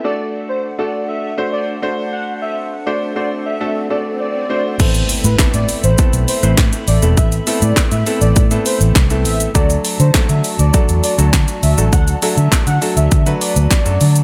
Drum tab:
CC |----------------|----------------|x---------------|----------------|
HH |----------------|----------------|xxoxxxoxxxoxxxox|xxoxxxoxxxoxxxox|
SH |----------------|----------------|xxxxxxxxxxxxxxxx|xxxxxxxxxxxxxxxx|
CP |----------------|----------------|----x-------x---|----x-------x---|
SD |----------------|----------------|----o-------o---|----o-------o---|
BD |----------------|----------------|o---o---o---o---|o---o---o---o---|

CC |----------------|----------------|
HH |xxoxxxoxxxoxxxox|xxoxxxoxxxoxxxox|
SH |xxxxxxxxxxxxxxxx|xxxxxxxxxxxxxxxx|
CP |----x-------x---|----x-------x---|
SD |----o-------o---|----o-------o---|
BD |o---o---o---o---|o---o---o---o---|